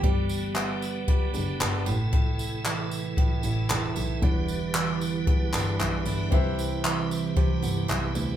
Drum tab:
TB |-x-x-x-x|-x-x-x-x|-x-x-x-x|-x-x-x-x|
CP |--x---x-|--x---x-|--x--xx-|--x---x-|
BD |o---o---|o---o---|o---o---|o---o---|